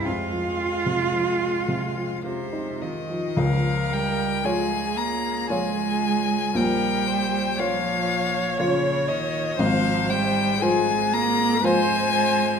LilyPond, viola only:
\new Staff \with { instrumentName = "Viola" } { \time 3/4 \key f \minor \tempo 4 = 57 aes2~ aes8 r8 | bes'4 aes'2 | bes'8 c''8 des''2 | c''4 aes'4 c''8 c''8 | }